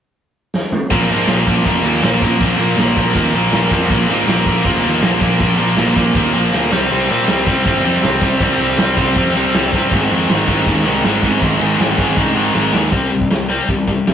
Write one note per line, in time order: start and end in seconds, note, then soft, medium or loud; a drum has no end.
0.54 snare medium
0.72 mid tom medium
0.90 1.06 A#1 medium
0.90 1.10 A#2 medium
0.90 1.11 F3 medium
0.90 1.12 A#3 loud
0.90 kick loud
0.90 crash medium
1.10 1.25 G#2 medium
1.10 1.29 A#2 medium
1.10 1.29 F3 medium
1.10 1.30 A#3 loud
1.10 crash medium
1.27 1.44 A#1 medium
1.27 1.46 A#2 loud
1.27 1.47 F3 medium
1.27 1.47 A#3 loud
1.27 snare loud
1.27 crash medium
1.46 1.63 A#1 medium
1.46 1.65 A#2 medium
1.46 1.65 F3 medium
1.46 1.66 A#3 medium
1.46 kick medium
1.46 crash medium
1.65 1.81 F1 medium
1.65 1.84 A#2 loud
1.65 1.84 F3 loud
1.65 1.85 A#3 loud
1.65 kick loud
1.65 crash medium
1.84 1.99 D#2 medium
1.84 2.02 A#2 medium
1.84 2.03 F3 loud
1.84 2.03 A#3 loud
1.84 crash medium
2.02 2.18 A#1 loud
2.02 2.23 A#2 loud
2.02 2.24 F3 loud
2.02 2.24 A#3 loud
2.02 snare loud
2.02 crash loud
2.22 2.37 A#1 medium
2.22 2.41 A#2 loud
2.22 2.42 F3 loud
2.22 2.42 A#3 loud
2.22 kick medium
2.22 crash medium
2.40 2.56 A#1 medium
2.40 2.60 A#2 medium
2.40 2.61 F3 loud
2.40 2.62 A#3 loud
2.40 kick loud
2.40 crash medium
2.58 2.74 A#1 medium
2.58 2.76 A#2 medium
2.58 2.78 F3 medium
2.58 crash medium
2.62 2.78 A#3 medium
2.77 2.93 A#1 loud
2.77 2.97 A#2 loud
2.77 2.97 F3 loud
2.77 2.98 A#3 loud
2.77 snare loud
2.77 crash medium
2.97 3.12 A#1 medium
2.97 3.15 A#2 medium
2.97 3.16 F3 medium
2.97 3.16 A#3 medium
2.97 kick medium
2.97 crash medium
3.15 3.31 D#2 loud
3.15 3.33 A#2 loud
3.15 3.34 F3 loud
3.15 3.34 A#3 loud
3.15 kick medium
3.15 crash medium
3.34 3.49 A#1 medium
3.34 3.53 A#2 medium
3.34 3.52 F3 medium
3.34 3.53 A#3 loud
3.34 crash medium
3.53 3.68 A#1 medium
3.53 3.71 A#2 loud
3.53 3.73 F3 loud
3.53 3.73 A#3 loud
3.53 snare loud
3.53 crash medium
3.71 3.87 F2 medium
3.71 3.90 A#2 medium
3.71 3.91 F3 loud
3.71 3.91 A#3 loud
3.71 kick medium
3.71 crash medium
3.90 4.06 A#1 loud
3.90 4.08 A#2 medium
3.90 4.09 F3 loud
3.90 4.10 A#3 loud
3.90 kick loud
3.90 crash medium
4.08 4.24 G#2 medium
4.08 4.29 A#2 medium
4.08 4.29 F3 medium
4.08 4.30 A#3 medium
4.08 crash medium
4.27 4.43 A#1 medium
4.27 4.46 A#2 loud
4.27 4.46 F3 loud
4.27 4.47 A#3 loud
4.27 snare loud
4.27 crash medium
4.46 4.62 A#1 medium
4.46 4.64 A#2 medium
4.46 4.64 F3 medium
4.46 4.65 A#3 loud
4.46 kick medium
4.46 crash medium
4.65 4.81 F1 medium
4.65 4.82 A#2 loud
4.65 4.82 F3 loud
4.65 4.83 A#3 loud
4.65 kick loud
4.65 crash medium
4.83 4.99 D#2 medium
4.83 5.01 A#2 medium
4.83 5.01 F3 loud
4.83 5.02 A#3 loud
4.83 crash medium
5.02 5.18 A#1 medium
5.02 5.20 A#2 loud
5.02 5.21 F3 medium
5.02 5.21 A#3 loud
5.02 snare loud
5.02 crash medium
5.21 5.37 A#1 loud
5.21 5.39 A#2 medium
5.21 5.39 F3 loud
5.21 5.39 A#3 medium
5.21 kick medium
5.21 crash medium
5.40 5.56 A#1 loud
5.40 5.56 A#2 medium
5.40 5.57 F3 medium
5.40 5.57 A#3 loud
5.40 kick loud
5.40 crash medium
5.58 5.75 A#1 medium
5.58 5.76 A#2 medium
5.58 5.77 F3 medium
5.58 5.77 A#3 loud
5.58 crash medium
5.77 5.93 A#1 medium
5.77 5.94 A#2 loud
5.77 5.95 F3 loud
5.77 5.95 A#3 loud
5.77 snare loud
5.77 crash medium
5.95 6.12 A#1 medium
5.95 6.14 A#2 medium
5.95 6.15 F3 medium
5.95 6.16 A#3 medium
5.95 kick medium
5.95 crash medium
6.15 6.30 D#2 medium
6.15 6.32 A#2 medium
6.15 6.33 F3 medium
6.15 6.34 A#3 loud
6.15 kick loud
6.15 crash medium
6.34 6.50 A#1 medium
6.34 6.53 A#2 medium
6.34 6.53 F3 loud
6.34 6.54 A#3 loud
6.34 crash medium
6.53 6.68 D2 medium
6.53 6.71 A#2 loud
6.53 6.71 F3 medium
6.53 6.72 A#3 loud
6.53 snare medium
6.72 6.88 C2 medium
6.72 6.91 C3 loud
6.72 6.91 G3 loud
6.72 6.91 C4 loud
6.72 snare medium
6.90 7.07 C2 medium
6.90 7.09 C3 medium
6.90 7.10 G3 loud
6.90 7.10 C4 loud
6.90 crash medium
7.09 7.25 A#2 medium
7.09 7.27 C3 medium
7.09 7.27 G3 medium
7.09 7.28 C4 medium
7.09 crash medium
7.27 7.44 C2 medium
7.27 7.45 C3 loud
7.27 7.47 G3 loud
7.27 7.47 C4 loud
7.27 snare loud
7.27 crash medium
7.46 7.62 C2 medium
7.46 7.63 C3 medium
7.46 7.64 G3 medium
7.46 7.65 C4 medium
7.46 kick loud
7.46 crash medium
7.64 7.81 G1 medium
7.64 7.83 C3 loud
7.64 7.84 G3 loud
7.64 7.85 C4 loud
7.64 kick loud
7.64 crash medium
7.84 8.00 F2 medium
7.84 8.01 C3 medium
7.84 8.02 G3 medium
7.84 8.03 C4 medium
7.84 crash medium
8.02 8.18 C2 medium
8.02 8.21 C3 medium
8.02 8.22 G3 loud
8.02 8.23 C4 loud
8.02 snare loud
8.02 crash medium
8.22 8.37 C2 medium
8.22 8.41 C3 loud
8.22 8.41 G3 loud
8.22 8.43 C4 loud
8.22 kick medium
8.22 crash medium
8.40 8.56 C2 loud
8.40 8.59 C3 loud
8.40 8.59 G3 loud
8.40 8.61 C4 loud
8.40 kick loud
8.40 crash loud
8.59 8.74 C2 medium
8.59 8.77 C3 medium
8.59 8.78 G3 medium
8.59 8.79 C4 medium
8.59 crash medium
8.78 8.94 C2 medium
8.78 8.96 C3 loud
8.78 8.97 G3 loud
8.78 8.99 C4 loud
8.78 snare loud
8.78 crash medium
8.97 9.13 C2 loud
8.97 9.16 C3 medium
8.97 9.16 G3 medium
8.97 9.17 C4 medium
8.97 kick medium
8.97 crash medium
9.16 9.32 F2 loud
9.16 9.35 C3 medium
9.16 9.36 G3 loud
9.16 9.37 C4 loud
9.16 kick loud
9.16 crash medium
9.34 9.49 C2 medium
9.34 9.54 C3 medium
9.34 9.55 G3 medium
9.34 9.56 C4 loud
9.34 crash medium
9.53 9.69 C2 medium
9.53 9.74 C3 loud
9.53 9.75 G3 loud
9.53 9.76 C4 loud
9.53 snare loud
9.53 crash medium
9.73 9.93 G2 medium
9.73 9.91 C3 medium
9.73 9.92 G3 medium
9.73 12.91 C4 medium
9.73 kick medium
9.73 crash medium
9.92 10.07 G#1 medium
9.92 10.12 G#2 loud
9.92 10.12 D#3 medium
9.92 10.13 G#3 loud
9.92 kick loud
9.92 crash medium
10.10 10.26 F2 medium
10.10 10.30 G#2 medium
10.10 10.30 D#3 medium
10.10 10.31 G#3 loud
10.10 crash medium
10.29 10.45 G#1 medium
10.29 10.49 G#2 loud
10.29 10.47 D#3 loud
10.29 10.50 G#3 loud
10.29 snare loud
10.29 crash medium
10.48 10.63 G#1 medium
10.48 10.66 G#2 medium
10.48 10.66 D#3 medium
10.48 10.67 G#3 loud
10.48 kick medium
10.48 crash medium
10.66 10.82 D#2 medium
10.66 10.85 G#2 loud
10.66 10.85 D#3 medium
10.66 10.86 G#3 loud
10.66 kick medium
10.66 crash medium
10.86 11.02 C2 medium
10.86 11.04 G#2 medium
10.86 11.04 D#3 medium
10.86 11.05 G#3 medium
10.86 crash medium
11.04 11.20 G#1 medium
11.04 11.21 G#2 medium
11.04 11.22 D#3 loud
11.04 11.23 G#3 loud
11.04 snare loud
11.04 crash medium
11.22 11.39 G#1 medium
11.22 11.41 G#2 medium
11.22 11.43 D#3 medium
11.22 11.42 G#3 loud
11.22 kick medium
11.22 crash medium
11.42 11.58 G#1 loud
11.42 11.60 G#2 medium
11.42 11.61 D#3 loud
11.42 11.62 G#3 loud
11.42 kick loud
11.42 crash loud
11.60 11.76 G#1 medium
11.60 11.79 G#2 medium
11.60 11.79 D#3 medium
11.60 11.79 G#3 medium
11.60 crash medium
11.79 11.95 G#1 medium
11.79 11.98 G#2 loud
11.79 11.99 D#3 loud
11.79 11.99 G#3 loud
11.79 snare loud
11.79 crash medium
11.98 12.14 G#1 medium
11.98 12.14 G#2 medium
11.98 12.16 D#3 loud
11.98 12.16 G#3 medium
11.98 kick loud
11.98 crash medium
12.16 12.33 C2 loud
12.16 12.34 G#2 loud
12.16 12.35 D#3 medium
12.16 12.34 G#3 loud
12.16 kick loud
12.16 crash medium
12.35 12.52 G#1 medium
12.35 12.53 G#2 medium
12.35 12.54 D#3 medium
12.35 12.54 G#3 medium
12.35 crash medium
12.55 12.71 G#1 medium
12.55 12.72 G#2 medium
12.55 12.72 D#3 medium
12.55 12.73 G#3 loud
12.55 snare medium
12.73 12.89 D#2 loud
12.73 12.91 G#2 medium
12.73 12.90 D#3 medium
12.73 12.91 G#3 medium
12.73 snare medium
12.91 13.06 C2 medium
12.91 13.10 C3 medium
12.91 13.10 G3 medium
12.91 13.10 C4 medium
12.91 kick loud
12.91 open hi-hat medium
13.11 13.27 C2 medium
13.11 13.29 C3 medium
13.11 13.29 G3 medium
13.21 kick medium
13.31 13.59 C2 medium
13.31 13.47 C3 medium
13.31 13.48 G3 medium
13.31 snare loud
13.31 open hi-hat medium
13.49 13.67 C3 medium
13.49 13.67 G3 medium
13.49 13.68 C4 loud
13.69 13.97 C2 medium
13.69 13.86 C3 medium
13.69 13.86 G3 medium
13.69 kick loud
13.69 open hi-hat medium
13.88 14.05 C3 medium
13.88 14.05 G3 medium
13.88 kick medium
14.07 14.14 C2 medium
14.07 14.14 C3 medium
14.07 14.14 G3 medium
14.07 snare loud
14.07 open hi-hat medium